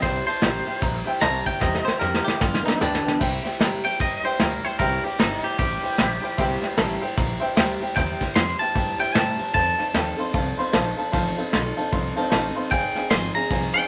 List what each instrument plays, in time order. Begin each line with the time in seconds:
0.02 upright bass C2, steel-string acoustic guitar C3 G3 A#3 E4 G4, upright piano C5 E5 G5, clean electric guitar C5, kick, ride
0.26 steel-string acoustic guitar A#3 E4 G4, upright piano C5 E5 A5, clean electric guitar C5, muted upright bass stroke, ride
0.41 upright bass A1, steel-string acoustic guitar C3 G3 A#3 E4 G4, upright piano C5 E5 G5, snare, ride
0.65 steel-string acoustic guitar A#3 E4 G4, upright piano C5 E5 G5, muted upright bass stroke, ride
0.80 upright bass A#1, steel-string acoustic guitar G3 A#3 E4 G4, upright piano C5 E5 A#5, kick, ride
1.05 steel-string acoustic guitar A#3 E4 G4, upright piano C5 E5 G5, muted upright bass stroke, ride
1.20 upright bass C2, steel-string acoustic guitar C3 G3 A#3 E4 G4, upright piano C5 E5 A5, clean electric guitar A#5, snare, ride
1.45 steel-string acoustic guitar A#3 E4 G4, upright piano C5 E5 G5, clean electric guitar G5, muted upright bass stroke, kick, ride
1.60 upright bass E2, steel-string acoustic guitar C3 G3 A#3 E4 G4, upright piano C5 E5 G5, clean electric guitar D#5, kick, snare
1.75 snare
1.84 steel-string acoustic guitar A#3 E4 G4, upright piano C5 E5 G5, clean electric guitar C5, muted upright bass stroke, snare
1.99 upright bass F2, steel-string acoustic guitar C3 G3 A#3 E4 G4, clean electric guitar A#4, upright piano C5 E5 G5, snare
2.14 snare
2.24 steel-string acoustic guitar A#3 E4 G4, clean electric guitar G4, upright piano C5 E5 G5, muted upright bass stroke, snare
2.39 upright bass G2, steel-string acoustic guitar F3 B3 D4 G4, clean electric guitar F4, upright piano B4 D5 G5, kick, snare
2.54 snare
2.64 steel-string acoustic guitar F3 B3 D4 G4, clean electric guitar D#4, upright piano B4 D5 E5, muted upright bass stroke
2.68 snare
2.79 upright bass D2, steel-string acoustic guitar G2 D3 F3 B3 D4 G4, clean electric guitar D4, upright piano B4 D5 G5, snare
2.95 snare
3.04 steel-string acoustic guitar F3 B3 D4 G4, upright piano B4 D5 G5, muted upright bass stroke
3.08 snare
3.20 upright bass C2, steel-string acoustic guitar C3 G3 A#3 E4 G4, upright piano C5 E5 G5, kick, crash
3.43 steel-string acoustic guitar A#3 E4 G4, upright piano C5 E5 G5, muted upright bass stroke, snare, ride
3.59 upright bass F2, steel-string acoustic guitar C3 G3 A#3 E4 G4, upright piano C5 E5 G5, snare, ride
3.83 steel-string acoustic guitar A#3 E4 G4, upright piano C5 E5 G5, clean electric guitar G5, muted upright bass stroke, ride
3.99 upright bass E2, steel-string acoustic guitar G3 A#3 E4 G4, upright piano C5 E5 G5, clean electric guitar D#5, kick, ride
4.23 steel-string acoustic guitar A#3 E4 G4, upright piano C5 E5 G5, clean electric guitar C5, muted upright bass stroke, ride
4.39 upright bass D2, steel-string acoustic guitar C3 G3 A#3 E4 G4, clean electric guitar A#4, upright piano C5 E5 G5, snare, ride
4.63 steel-string acoustic guitar A#3 E4 G4, upright piano C5 E5 G5, clean electric guitar C5, muted upright bass stroke, ride
4.79 upright bass C2, steel-string acoustic guitar C3 G3 A#3 E4 G4, clean electric guitar A#4, upright piano C5 E5 G5, kick, ride
5.03 steel-string acoustic guitar A#3 E4 G4, clean electric guitar G4, upright piano C5 E5 G5, muted upright bass stroke, ride
5.18 upright bass G1, steel-string acoustic guitar C3 G3 A#3 E4 G4, clean electric guitar D#4, upright piano C5 E5 G5, snare, ride
5.42 steel-string acoustic guitar A#3 E4 G4, clean electric guitar G4, upright piano C5 E5 G5, muted upright bass stroke, ride
5.58 upright bass A1, steel-string acoustic guitar G3 A#3 E4 G4, clean electric guitar G4, upright piano C5 E5 G5, kick, ride
5.82 steel-string acoustic guitar A#3 E4 G4, upright piano C5 E5 G5, muted upright bass stroke, ride
5.97 upright bass A#1, steel-string acoustic guitar C3 G3 A#3 E4 G4, upright piano C5 E5 G5, snare, ride
6.21 steel-string acoustic guitar A#3 E4 G4, upright piano C5 E5 G5, muted upright bass stroke, ride
6.38 upright bass C2, steel-string acoustic guitar C3 G3 A#3 E4 G4, upright piano C5 E5 G5, kick, ride
6.61 steel-string acoustic guitar A#3 E4 G4, upright piano C5 E5 G5, muted upright bass stroke, snare, ride
6.77 upright bass A1, steel-string acoustic guitar C3 G3 A#3 E4 G4, upright piano C5 E5 A5, snare, ride
7.01 steel-string acoustic guitar A#3 E4 G4, upright piano C5 E5 G5, muted upright bass stroke, ride
7.16 upright bass A#1, steel-string acoustic guitar G3 A#3 E4 G4, upright piano C5 E5 A#5, kick, ride
7.40 steel-string acoustic guitar A#3 E4 G4, upright piano C5 E5 G5, muted upright bass stroke, ride
7.56 upright bass D2, steel-string acoustic guitar C3 G3 A#3 E4 G4, upright piano C5 E5 G5, snare, ride
7.81 steel-string acoustic guitar A#3 E4 G4, upright piano C5 E5 G5, muted upright bass stroke, ride
7.96 upright bass E2, steel-string acoustic guitar C3 G3 A#3 E4 G4, upright piano C5 E5 G5, clean electric guitar G5, kick, ride
8.20 steel-string acoustic guitar A#3 E4 G4, upright piano C5 E5 G5, muted upright bass stroke, kick, snare, ride
8.35 upright bass F2, steel-string acoustic guitar C3 G3 A#3 E4 G4, upright piano C5 E5 G5, clean electric guitar C6, snare, ride
8.59 steel-string acoustic guitar A#3 E4 G4, upright piano C5 E5 G5, clean electric guitar A5, muted upright bass stroke, ride
8.74 upright bass G2, steel-string acoustic guitar G3 A#3 E4 G4, upright piano C5 E5 G5, kick, ride
8.99 steel-string acoustic guitar A#3 E4 G4, upright piano C5 E5 G5, clean electric guitar G5, muted upright bass stroke, ride
9.14 upright bass A2, steel-string acoustic guitar C3 G3 A#3 E4 G4, upright piano C5 E5 G5, clean electric guitar A5, snare, ride
9.38 steel-string acoustic guitar A#3 E4 G4, upright piano C5 E5 A5, muted upright bass stroke, ride
9.53 upright bass F2, steel-string acoustic guitar F3 C4 D#4 A4, upright piano C5 F5 A5, clean electric guitar A5, kick, ride
9.78 steel-string acoustic guitar C4 D#4 A4, upright piano C5 F5 A5, muted upright bass stroke, snare, ride
9.93 upright bass D#2, steel-string acoustic guitar F3 C4 D#4 A4, upright piano C5 F5 G5, snare, ride
10.17 steel-string acoustic guitar C4 D#4 A4, upright piano C5 F5 C6, muted upright bass stroke, ride
10.33 upright bass C2, steel-string acoustic guitar F3 C4 D#4 A4, upright piano C5 F5 A5, kick, ride
10.57 steel-string acoustic guitar C4 D#4 A4, upright piano C5 F5 C6, muted upright bass stroke, ride
10.72 upright bass A#1, steel-string acoustic guitar F3 C4 D#4 A4, upright piano C5 F5 A5, snare, ride
10.97 steel-string acoustic guitar C4 D#4 A4, upright piano C5 F5 A5, muted upright bass stroke, ride
11.12 upright bass A1, steel-string acoustic guitar F3 C4 D#4 A4, upright piano C5 F5 A5, kick, ride
11.37 steel-string acoustic guitar C4 D#4 A4, upright piano C5 F5 A5, muted upright bass stroke, ride
11.52 upright bass B1, steel-string acoustic guitar F3 C4 D#4 A4, upright piano C5 F5 C6, snare, ride
11.76 steel-string acoustic guitar C4 D#4 A4, upright piano C5 F5 A5, muted upright bass stroke, ride
11.91 upright bass C2, steel-string acoustic guitar F3 C4 D#4 A4, upright piano C5 F5 C6, kick, ride
12.16 steel-string acoustic guitar C4 D#4 A4, upright piano C5 F5 A5, muted upright bass stroke, ride
12.30 upright bass A1, steel-string acoustic guitar F3 C4 D#4 A4, upright piano C5 F5 A5, snare, ride
12.55 steel-string acoustic guitar C4 D#4 A4, upright piano C5 F5 C6, muted upright bass stroke, ride
12.71 upright bass F1, steel-string acoustic guitar F3 C4 D#4 G#4, upright piano C5 F5 G#5, clean electric guitar G5, kick, ride
12.95 steel-string acoustic guitar C4 D#4 G#4, upright piano C5 F5 G#5, muted upright bass stroke, snare, ride
13.11 upright bass G#1, steel-string acoustic guitar F3 C4 D#4 G#4, upright piano F5 G#5, clean electric guitar C6, snare, ride
13.35 steel-string acoustic guitar C4 D#4 G#4, upright piano C5 F5 G#5, clean electric guitar A#5, muted upright bass stroke, ride
13.49 upright bass C2, steel-string acoustic guitar F3 C4 D#4 G#4, upright piano C5 F5 G#5, kick, ride
13.74 steel-string acoustic guitar C4 D#4 G#4, upright piano C5 F5 G#5, clean electric guitar G5, muted upright bass stroke, ride